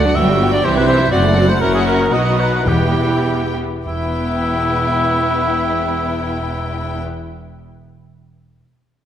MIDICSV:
0, 0, Header, 1, 8, 480
1, 0, Start_track
1, 0, Key_signature, 1, "minor"
1, 0, Tempo, 482315
1, 636, Time_signature, 2, 2, 24, 8
1, 1601, Tempo, 530973
1, 2561, Tempo, 596421
1, 7695, End_track
2, 0, Start_track
2, 0, Title_t, "Violin section"
2, 0, Program_c, 0, 48
2, 0, Note_on_c, 0, 78, 67
2, 156, Note_off_c, 0, 78, 0
2, 172, Note_on_c, 0, 79, 59
2, 643, Note_off_c, 0, 79, 0
2, 648, Note_on_c, 0, 76, 67
2, 1112, Note_on_c, 0, 78, 66
2, 1118, Note_off_c, 0, 76, 0
2, 2047, Note_off_c, 0, 78, 0
2, 2067, Note_on_c, 0, 78, 47
2, 2551, Note_off_c, 0, 78, 0
2, 2558, Note_on_c, 0, 79, 45
2, 3255, Note_off_c, 0, 79, 0
2, 3521, Note_on_c, 0, 79, 40
2, 6052, Note_off_c, 0, 79, 0
2, 7695, End_track
3, 0, Start_track
3, 0, Title_t, "Cor anglais"
3, 0, Program_c, 1, 69
3, 0, Note_on_c, 1, 74, 77
3, 153, Note_on_c, 1, 76, 69
3, 168, Note_off_c, 1, 74, 0
3, 514, Note_off_c, 1, 76, 0
3, 523, Note_on_c, 1, 74, 80
3, 646, Note_on_c, 1, 72, 84
3, 661, Note_off_c, 1, 74, 0
3, 760, Note_off_c, 1, 72, 0
3, 768, Note_on_c, 1, 71, 68
3, 866, Note_off_c, 1, 71, 0
3, 871, Note_on_c, 1, 72, 82
3, 1103, Note_off_c, 1, 72, 0
3, 1109, Note_on_c, 1, 74, 73
3, 1468, Note_off_c, 1, 74, 0
3, 1481, Note_on_c, 1, 72, 73
3, 1600, Note_off_c, 1, 72, 0
3, 1604, Note_on_c, 1, 70, 76
3, 1714, Note_off_c, 1, 70, 0
3, 1727, Note_on_c, 1, 68, 63
3, 1776, Note_off_c, 1, 68, 0
3, 1836, Note_on_c, 1, 70, 72
3, 2075, Note_on_c, 1, 75, 63
3, 2089, Note_off_c, 1, 70, 0
3, 2320, Note_on_c, 1, 71, 64
3, 2334, Note_off_c, 1, 75, 0
3, 2572, Note_on_c, 1, 67, 54
3, 2584, Note_off_c, 1, 71, 0
3, 3276, Note_off_c, 1, 67, 0
3, 3521, Note_on_c, 1, 64, 65
3, 6052, Note_off_c, 1, 64, 0
3, 7695, End_track
4, 0, Start_track
4, 0, Title_t, "Violin section"
4, 0, Program_c, 2, 48
4, 53, Note_on_c, 2, 62, 50
4, 53, Note_on_c, 2, 66, 41
4, 164, Note_off_c, 2, 66, 0
4, 166, Note_off_c, 2, 62, 0
4, 172, Note_on_c, 2, 67, 51
4, 175, Note_on_c, 2, 66, 54
4, 277, Note_off_c, 2, 67, 0
4, 279, Note_off_c, 2, 66, 0
4, 297, Note_on_c, 2, 66, 49
4, 300, Note_on_c, 2, 62, 45
4, 405, Note_off_c, 2, 66, 0
4, 409, Note_off_c, 2, 62, 0
4, 414, Note_on_c, 2, 67, 55
4, 417, Note_on_c, 2, 66, 55
4, 518, Note_off_c, 2, 66, 0
4, 525, Note_off_c, 2, 67, 0
4, 527, Note_on_c, 2, 62, 53
4, 530, Note_on_c, 2, 66, 52
4, 640, Note_on_c, 2, 67, 65
4, 641, Note_off_c, 2, 62, 0
4, 643, Note_off_c, 2, 66, 0
4, 644, Note_off_c, 2, 67, 0
4, 644, Note_on_c, 2, 67, 65
4, 750, Note_off_c, 2, 67, 0
4, 766, Note_on_c, 2, 72, 51
4, 770, Note_on_c, 2, 64, 52
4, 879, Note_off_c, 2, 72, 0
4, 880, Note_on_c, 2, 67, 54
4, 881, Note_off_c, 2, 64, 0
4, 882, Note_off_c, 2, 67, 0
4, 882, Note_on_c, 2, 67, 42
4, 996, Note_off_c, 2, 67, 0
4, 1002, Note_on_c, 2, 72, 46
4, 1005, Note_on_c, 2, 64, 49
4, 1117, Note_off_c, 2, 72, 0
4, 1117, Note_on_c, 2, 66, 57
4, 1118, Note_off_c, 2, 64, 0
4, 1118, Note_off_c, 2, 66, 0
4, 1118, Note_on_c, 2, 66, 46
4, 1227, Note_off_c, 2, 66, 0
4, 1240, Note_on_c, 2, 69, 45
4, 1241, Note_on_c, 2, 64, 49
4, 1358, Note_off_c, 2, 69, 0
4, 1358, Note_on_c, 2, 66, 53
4, 1359, Note_off_c, 2, 64, 0
4, 1361, Note_off_c, 2, 66, 0
4, 1361, Note_on_c, 2, 66, 52
4, 1473, Note_on_c, 2, 64, 47
4, 1475, Note_on_c, 2, 69, 50
4, 1480, Note_off_c, 2, 66, 0
4, 1594, Note_off_c, 2, 64, 0
4, 1600, Note_off_c, 2, 69, 0
4, 1605, Note_on_c, 2, 64, 59
4, 1606, Note_on_c, 2, 66, 64
4, 2035, Note_off_c, 2, 64, 0
4, 2036, Note_off_c, 2, 66, 0
4, 2072, Note_on_c, 2, 63, 48
4, 2073, Note_on_c, 2, 66, 48
4, 2553, Note_off_c, 2, 63, 0
4, 2554, Note_off_c, 2, 66, 0
4, 2569, Note_on_c, 2, 64, 46
4, 2570, Note_on_c, 2, 67, 45
4, 3305, Note_off_c, 2, 67, 0
4, 3319, Note_off_c, 2, 64, 0
4, 3518, Note_on_c, 2, 64, 51
4, 6051, Note_off_c, 2, 64, 0
4, 7695, End_track
5, 0, Start_track
5, 0, Title_t, "Viola section"
5, 0, Program_c, 3, 48
5, 53, Note_on_c, 3, 54, 48
5, 153, Note_off_c, 3, 54, 0
5, 165, Note_on_c, 3, 54, 56
5, 170, Note_on_c, 3, 59, 53
5, 273, Note_off_c, 3, 54, 0
5, 276, Note_off_c, 3, 59, 0
5, 287, Note_on_c, 3, 54, 55
5, 287, Note_on_c, 3, 55, 56
5, 388, Note_off_c, 3, 54, 0
5, 400, Note_on_c, 3, 54, 49
5, 401, Note_on_c, 3, 59, 50
5, 402, Note_off_c, 3, 55, 0
5, 512, Note_off_c, 3, 54, 0
5, 519, Note_off_c, 3, 59, 0
5, 523, Note_on_c, 3, 55, 47
5, 524, Note_on_c, 3, 54, 48
5, 637, Note_on_c, 3, 60, 55
5, 639, Note_off_c, 3, 55, 0
5, 639, Note_on_c, 3, 52, 60
5, 640, Note_off_c, 3, 54, 0
5, 747, Note_off_c, 3, 60, 0
5, 748, Note_off_c, 3, 52, 0
5, 760, Note_on_c, 3, 64, 50
5, 761, Note_on_c, 3, 55, 54
5, 876, Note_off_c, 3, 55, 0
5, 876, Note_off_c, 3, 64, 0
5, 876, Note_on_c, 3, 52, 61
5, 876, Note_on_c, 3, 60, 56
5, 993, Note_off_c, 3, 52, 0
5, 994, Note_off_c, 3, 60, 0
5, 1003, Note_on_c, 3, 64, 50
5, 1004, Note_on_c, 3, 55, 51
5, 1117, Note_off_c, 3, 64, 0
5, 1118, Note_off_c, 3, 55, 0
5, 1119, Note_on_c, 3, 54, 55
5, 1120, Note_on_c, 3, 60, 48
5, 1228, Note_off_c, 3, 54, 0
5, 1228, Note_off_c, 3, 60, 0
5, 1238, Note_on_c, 3, 57, 54
5, 1239, Note_off_c, 3, 57, 0
5, 1239, Note_on_c, 3, 57, 50
5, 1357, Note_off_c, 3, 57, 0
5, 1363, Note_on_c, 3, 60, 49
5, 1365, Note_on_c, 3, 54, 50
5, 1481, Note_off_c, 3, 60, 0
5, 1482, Note_off_c, 3, 54, 0
5, 1487, Note_on_c, 3, 57, 41
5, 1489, Note_off_c, 3, 57, 0
5, 1489, Note_on_c, 3, 57, 44
5, 1606, Note_off_c, 3, 57, 0
5, 1609, Note_on_c, 3, 61, 60
5, 1611, Note_on_c, 3, 54, 59
5, 2038, Note_off_c, 3, 54, 0
5, 2038, Note_off_c, 3, 61, 0
5, 2075, Note_on_c, 3, 54, 51
5, 2076, Note_on_c, 3, 59, 56
5, 2555, Note_off_c, 3, 54, 0
5, 2556, Note_off_c, 3, 59, 0
5, 2568, Note_on_c, 3, 52, 43
5, 2569, Note_on_c, 3, 59, 43
5, 3304, Note_off_c, 3, 59, 0
5, 3319, Note_off_c, 3, 52, 0
5, 3517, Note_on_c, 3, 59, 47
5, 6050, Note_off_c, 3, 59, 0
5, 7695, End_track
6, 0, Start_track
6, 0, Title_t, "Cello section"
6, 0, Program_c, 4, 48
6, 0, Note_on_c, 4, 38, 64
6, 105, Note_off_c, 4, 38, 0
6, 156, Note_on_c, 4, 43, 67
6, 578, Note_off_c, 4, 43, 0
6, 637, Note_on_c, 4, 48, 61
6, 1056, Note_off_c, 4, 48, 0
6, 1108, Note_on_c, 4, 42, 66
6, 1540, Note_off_c, 4, 42, 0
6, 1601, Note_on_c, 4, 42, 53
6, 2033, Note_off_c, 4, 42, 0
6, 2063, Note_on_c, 4, 47, 51
6, 2549, Note_off_c, 4, 47, 0
6, 2555, Note_on_c, 4, 40, 44
6, 3312, Note_off_c, 4, 40, 0
6, 3509, Note_on_c, 4, 40, 43
6, 6046, Note_off_c, 4, 40, 0
6, 7695, End_track
7, 0, Start_track
7, 0, Title_t, "Timpani"
7, 0, Program_c, 5, 47
7, 2560, Note_on_c, 5, 40, 56
7, 3238, Note_off_c, 5, 40, 0
7, 3518, Note_on_c, 5, 40, 37
7, 6614, Note_off_c, 5, 40, 0
7, 7695, End_track
8, 0, Start_track
8, 0, Title_t, "Double bass section"
8, 0, Program_c, 6, 48
8, 0, Note_on_c, 6, 38, 72
8, 106, Note_off_c, 6, 38, 0
8, 162, Note_on_c, 6, 31, 70
8, 581, Note_off_c, 6, 31, 0
8, 640, Note_on_c, 6, 36, 71
8, 1057, Note_off_c, 6, 36, 0
8, 1117, Note_on_c, 6, 30, 64
8, 1545, Note_off_c, 6, 30, 0
8, 1611, Note_on_c, 6, 30, 57
8, 2038, Note_off_c, 6, 30, 0
8, 2074, Note_on_c, 6, 35, 57
8, 2554, Note_off_c, 6, 35, 0
8, 2566, Note_on_c, 6, 28, 49
8, 3318, Note_off_c, 6, 28, 0
8, 3518, Note_on_c, 6, 28, 52
8, 6050, Note_off_c, 6, 28, 0
8, 7695, End_track
0, 0, End_of_file